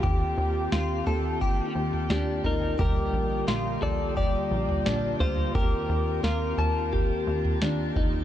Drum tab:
SD |----o-------o---|----o-------o---|----o-------o---|
FT |o-----o----o--oo|o-----o-o--o--oo|o-----o-o--o--oo|
BD |o-------o-------|o-------o-------|o-------o-----o-|